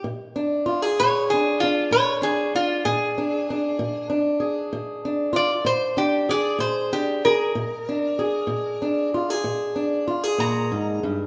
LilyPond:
<<
  \new Staff \with { instrumentName = "Resonator guitar played with a steel bar" } { \time 12/8 \key bes \mixolydian \tempo 4. = 64 r4. des''8 aes'8 f'8 des''8 aes'8 f'8 aes'4.~ | aes'8 r2 d''8 c''8 g'8 d''8 c''8 g'8 bes'8~ | bes'2~ bes'8 r2 bes''4 r8 | }
  \new Staff \with { instrumentName = "Steel-string acoustic guitar" } { \time 12/8 \key bes \mixolydian << { r8 d'8 f'16 aes'8. d'8 d'4 d'8 d'4 d'8 d'8 | r8 d'8 aes'4 d'8 f'16 r8. d'8 aes'4 d'8 aes'8 | r8 d'8 aes'4 d'8 f'16 aes'8. d'8 f'16 aes'4.~ aes'16 | } \\ { bes,4 r8 bes,4 r8 bes,4 r8 bes,4 r8 | bes,4 r8 bes,4 r8 bes,4 r8 bes,4 r8 | bes,4 r8 bes,4 r8 bes,4 r8 bes,8 aes,8 g,8 | } >> }
>>